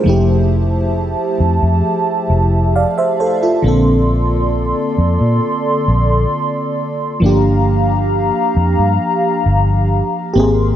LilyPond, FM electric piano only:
\new Staff \with { instrumentName = "FM electric piano" } { \time 4/4 \key f \major \tempo 4 = 67 << { <aes' c''>16 r2 r8. <d'' f''>16 <c'' e''>16 <a' c''>16 <f' a'>16~ | <f' a'>16 r2. r8. | r1 | } \\ { <f a e' g'>1 | <d bes c' a'>1 | <f bes d' g'>2.~ <f bes d' g'>8 <bes c' g' aes'>8 | } >> }